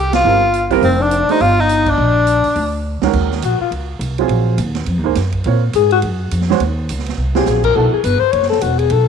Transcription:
Already playing: C2 G4
0.13 F4, snare, ride
0.24 G1 G3 C4 F4 A#4
0.54 closed hi-hat
0.71 G3 C4 F4 A#4, kick, open hi-hat
0.82 F1 C4, open hi-hat
1.00 D4
1.11 closed hi-hat
1.29 A3 D4 D#4 G4 C5, muted upright bass stroke, open hi-hat
1.40 G1 F4, open hi-hat
1.59 D#4
1.69 closed hi-hat
1.86 D4, kick, crash
1.98 A#1
2.27 closed hi-hat
2.44 muted upright bass stroke, open hi-hat
2.56 D2, open hi-hat
3.02 D2 D#3 G#3 C#4 F#4 A#4, snare
3.13 D#2, kick, crash
3.31 snare
3.42 A#1 F#4, hi-hat pedal, ride
3.60 F4, muted upright bass stroke
3.71 C#2, ride
3.99 C2, hi-hat pedal, ride
4.18 F#3 C4 F4 G#4, ride
4.28 A#1, ride
4.58 D#2, hi-hat pedal, ride
4.75 snare, ride
4.86 F2, ride
4.97 D#2
5.04 C#2 A#3 D#4 G#4 C5
5.15 F#2, snare, hi-hat pedal, ride
5.32 kick, ride
5.44 A#2 C4 F4 A#4 C#5, ride
5.73 G#2 G#4, hi-hat pedal, ride
5.91 F#4, ride
6.02 F#2, ride
6.31 F2, hi-hat pedal, ride
6.41 snare
6.50 G#3 C#4 F#4 C5, snare
6.60 D#2, ride
6.89 C#2, hi-hat pedal, ride
6.99 snare
7.06 snare, ride
7.17 C2
7.35 F#3 C4 F4 G4 G#4, snare
7.46 A#1 G#4, snare, hi-hat pedal
7.64 A#4, kick, crash
7.75 B1 F#3 B3 E4 A4
7.92 G#4, muted upright bass stroke
8.04 G1 B4, hi-hat pedal, ride
8.19 C5
8.32 F#1 C#5, ride
8.42 snare
8.49 A4, snare
8.61 E1 F#4, hi-hat pedal, ride
8.78 G#4, ride
8.90 B1 A4, ride

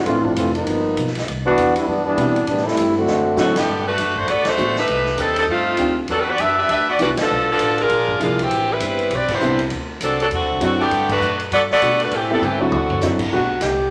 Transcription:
0.05 A1 E3 A3 C4 D4 E4 F4, kick, ride
0.24 F3 A3 C4 D4, kick
0.36 F1 E3 A3 C4 F4, kick, hi-hat pedal, ride
0.55 F3 A#3 B3 D#4, ride
0.66 G1, kick, ride
0.96 B1, kick, hi-hat pedal, ride
1.07 snare
1.15 snare, ride
1.27 C2, kick, ride
1.46 E3 B3 D4 F#4
1.57 E2, kick, hi-hat pedal, ride
1.76 G3 B3 D4 E4, ride
1.87 F#2 E3 G3 B3 D4, kick
2.05 E3 G3 B3 D4
2.17 B2 G3 B3 C4 D4 E4, kick, hi-hat pedal, ride
2.36 ride
2.47 A2 E3 G3 B3 D4, kick, ride
2.57 snare
2.66 G3 A3 C4 E4, snare
2.77 G2, kick, hi-hat pedal, ride
2.96 D3 A3 C4 F#4
3.07 F#2, snare
3.37 A2 D3 F#3 A3 C4 D4 E4 F#4, snare, hi-hat pedal
3.56 D3 A3 B3 G4, snare, ride
3.66 G2
3.87 A3 D4 F#4 B4
3.98 F#2, kick, hi-hat pedal, ride
4.16 A3 D4 F#4 C5, kick
4.27 D2 B3 F#4 A4 D5, kick, ride
4.45 A3 D4 F#4 C5, snare, ride
4.57 A1 G3 A3 B3 D4 F#4, hi-hat pedal
4.76 A3 D#4 G4 B4, snare
4.88 C2, kick, ride
5.06 snare
5.17 D#2 G3 C4 D#4 A4, hi-hat pedal, ride
5.36 G3 C4 D#4 A4, ride
5.48 G2 A3 C4 D#4 F4, kick
5.77 D2 D#3 A3 C4 D4 G4, kick, hi-hat pedal, ride
6.08 E2 F#3 B3 D4 A4, kick, ride
6.20 G3 D4 F#4 B4
6.29 B3 F#4 G4 D5
6.38 F#2 D4 G4 B4 E5, kick, hi-hat pedal, ride
6.58 D4 G4 B4 E5
6.69 D2 D4 G4 B4 E5, kick, ride
6.89 B3 F#4 G4 D5
6.99 C2 E3 G3 B3 D4 F#4 B4, kick, hi-hat pedal, ride
7.17 F3 A4, snare, ride
7.21 B3 D4
7.29 B1
7.50 F3 B3 D4 A4
7.59 A1, kick, hi-hat pedal, ride
7.78 G#3 D4 F4 A#4, ride
7.89 A#1, kick, ride
8.08 kick
8.20 C2 F3 G#3 A#3 D4 E4 F4, kick, hi-hat pedal, ride
8.39 E3 B3 C4 G4, ride
8.50 A1, kick, ride
8.71 G3 C4 E4 B4
8.80 G1, kick, hi-hat pedal, ride
8.99 ride
9.10 B1 C4 G4 D5, kick, ride
9.15 B4
9.28 kick, crash
9.33 G3 E4 B4 C5
9.39 C2 G3 B3 C4 D4 E4, hi-hat pedal
9.59 ride
9.70 D2, kick, ride
10.00 C2 F#3 C4 D4 A4, kick, hi-hat pedal, ride
10.20 F#3 C4 D4 A4, ride
10.30 E2 D3 A3 C4 F#4, kick, ride
10.40 D2
10.50 C2
10.61 F#2 D3 F#3 A3 C4 D4 E4 F#4, kick, hi-hat pedal, ride
10.81 D3 A3 B3 G4
10.91 G2, kick, ride
11.09 A3 D4 F#4 B4, kick, crash
11.20 F#2, hi-hat pedal
11.40 ride
11.51 G2 B3 F#4 A4 D5, kick, ride
11.71 B3 F#4 A4 D5, snare
11.81 B2 G3 A3 B3 D4 F#4, kick, hi-hat pedal, ride
12.00 A3 D4 F#4 B4, ride
12.11 A2 A3 C4 G4, kick, ride
12.15 E3
12.31 G3 A3 B3 C4 E4 A4
12.41 G2 E3 A3 C4 G4, hi-hat pedal, mid tom
12.60 D3 F#3 A3 C4 D4 E4 F#4
12.71 D2, mid tom
12.90 floor tom
13.01 F#2 F#3 A3 C4 D4 E4, snare, hi-hat pedal
13.19 kick, crash
13.31 B1 G3 A3 B3 D4 F#4, kick
13.61 C2 G4, kick, snare, hi-hat pedal, ride

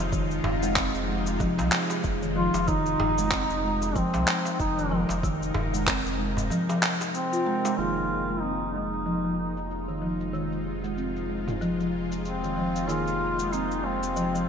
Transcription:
Already playing: C3 F3 G#3 D#4 F4
0.00 F1
0.13 D#3, kick, cabasa
0.31 cabasa
0.44 F1, darbuka tek, darbuka dum
0.63 G#3, cabasa
0.76 C4, kick, clap, cabasa
0.95 F1, cabasa
1.08 G#3
1.27 darbuka ka, cabasa
1.40 F3, kick, darbuka ka, cabasa
1.58 C2 F3, darbuka ka, darbuka tek, cabasa
1.72 clap
1.90 darbuka ka, darbuka tek, cabasa
2.04 F1, kick, cabasa
2.22 D#3, cabasa
2.36 F3 F4
2.54 F1, darbuka tek, cabasa
2.68 D#3 D#4 A#4, kick, cabasa
2.86 cabasa
3.00 F1, darbuka tek, darbuka dum
3.18 G#3, cabasa
3.31 C4, kick, clap, cabasa
3.50 F1, cabasa
3.64 G#3
3.82 darbuka ka, cabasa
3.96 F3 C4, kick, cabasa
4.14 C2 F3, darbuka tek, cabasa
4.28 clap
4.45 darbuka tek, cabasa
4.60 F1 D#4, kick, cabasa
4.78 D#3, cabasa
4.92 F3
5.09 F1, darbuka tek, cabasa
5.23 D#3, kick, cabasa
5.43 cabasa
5.54 F1, darbuka tek, darbuka dum
5.74 G#3, cabasa
5.87 C4, kick, clap, darbuka tek, cabasa
6.05 F1, cabasa
6.19 G#3
6.37 darbuka ka, darbuka dum, cabasa
6.50 F3, darbuka ka, cabasa
6.69 F3, darbuka ka, darbuka tek, cabasa
6.83 clap
7.01 darbuka ka, darbuka tek, cabasa
7.15 C4, cabasa
7.33 F4, cabasa
7.46 G#3, darbuka ka
7.65 G#3, darbuka tek, cabasa
7.77 F1 C3 D#3 F3 G#3 A#3 D#4 F4 G#4, cabasa
7.97 cabasa
8.29 G#3, cabasa
8.41 C4 D#4, cabasa
8.61 cabasa
8.73 G#3 D#4
8.93 cabasa
9.06 F3, cabasa
9.24 F3, cabasa
9.57 cabasa
9.71 cabasa
9.88 D#3, cabasa
10.02 F3
10.20 cabasa
10.34 D#3, cabasa
10.52 cabasa
10.84 G#3, cabasa
10.97 C4, cabasa
11.16 cabasa
11.29 G#3
11.48 mid tom, cabasa
11.61 F3, cabasa
11.80 F3, cabasa
12.12 cabasa
12.25 C4, cabasa
12.43 D#3, cabasa
12.57 F3
12.76 cabasa
12.87 D#3 F3 A#3 D#4 F4 G#4, cabasa
13.07 cabasa
13.39 G#3, cabasa
13.53 C4 D#4, cabasa
13.71 cabasa
13.85 G#3 C4
14.03 cabasa
14.16 F3, cabasa
14.35 F3, cabasa

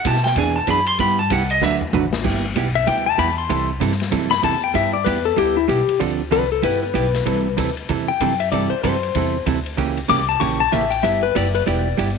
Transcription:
0.05 B2 G3 B3 E4 G4 A5, kick, hi-hat pedal, ride
0.16 snare
0.24 G5, snare, ride
0.36 E2 E3 B3 D4 G#4 G#5, kick, ride
0.56 A5
0.67 F#2 E3 B3 D4 G#4 B5, kick, hi-hat pedal, ride
0.87 C6, ride
0.99 G2 G3 B3 E4 G4 B5, kick, ride
1.19 A5
1.30 C2 G3 B3 E4 G4 F#5, kick, hi-hat pedal, ride
1.50 D#5, ride
1.61 D2 D3 F#3 A3 D4 F#4 B4 E5, snare
1.81 floor tom
1.93 A1 D3 F#3 A3 D4 F#4 B4, floor tom, hi-hat pedal
2.13 snare
2.24 G1 G3 B3 E4 G4, kick, crash
2.55 B1 G3 B3 E4 G4, kick, hi-hat pedal, ride
2.75 E5, ride
2.87 D2 G3 B3 E4 G4 G5, kick, ride
3.06 A5
3.18 E2 G3 B3 E4 G4 B5, kick, hi-hat pedal, ride
3.38 C6
3.49 C2 C3 E3 G3 C4 E4 A4, kick, ride
3.80 G2 C3 E3 G3 C4 E4 A4, kick, hi-hat pedal, ride
3.91 snare
4.00 snare, ride
4.11 F#2 C3 E3 G3 C4 E4 A4, kick, ride
4.31 B5, snare
4.43 E2 C3 E3 G3 C4 E4 A4 A5, kick, hi-hat pedal, ride
4.64 G5
4.74 G2 G3 B3 E4 G4 E5, kick, ride
4.93 D5
5.04 E2 G3 B3 E4 G4 B4, kick, hi-hat pedal, ride
5.25 A4
5.36 D2 G3 B3 E4 G4, kick, ride
5.57 E4
5.68 B1 G3 B3 E4 G4, kick, hi-hat pedal, ride
5.89 ride
5.99 D2 D3 F3 C4 D4 A4, kick, ride
6.31 C2 D3 F3 C4 D4 A4 B4, kick, hi-hat pedal, ride
6.52 A4
6.62 G1 G3 B3 E4 G4 B4, kick, ride
6.83 B4
6.94 B1 G3 B3 E4 G4, kick, hi-hat pedal, ride
7.14 snare, ride
7.26 C2 C3 E3 G3 C4 E4 A4, kick, ride
7.57 D2 C3 E3 G3 C4 E4 A4, kick, hi-hat pedal, ride
7.77 ride
7.89 E2 C3 E3 G3 C4 E4 A4, kick, ride
8.08 G5
8.20 F#2 C3 E3 G3 C4 E4 A4, kick, hi-hat pedal, ride
8.40 E5, ride
8.52 G2 C3 E3 G3 C4 E4 A4 D5, kick, ride
8.70 C5, muted upright bass stroke
8.83 F#2 C3 E3 G3 C4 E4 A4 C5, kick, hi-hat pedal, ride
9.03 ride
9.15 E2 C3 E3 G3 C4 E4 A4, kick, ride
9.46 D2 C3 E3 G3 C4 E4 A4, kick, hi-hat pedal, ride
9.66 ride
9.77 C#2 C#3 E3 A#3 C#4 G4, kick, ride
9.97 ride
10.08 C2 C#3 E3 A#3 C#4 G4 D6, kick, hi-hat pedal, ride
10.29 A5
10.40 A#1 C#3 E3 A#3 C#4 G4 C#6, kick, ride
10.60 A5
10.72 A1 C#3 E3 A#3 C#4 G4 E5, kick, hi-hat pedal, ride
10.91 G5, ride
11.03 G1 G3 B3 E4 G4 E5, kick, ride
11.23 B4
11.35 F#1 G3 B3 E4 G4 D5, kick, hi-hat pedal, ride
11.55 B4, ride
11.66 E1 G3 B3 E4 G4 D5, kick, ride
11.97 G1 G3 B3 E4 G4, kick, hi-hat pedal, ride

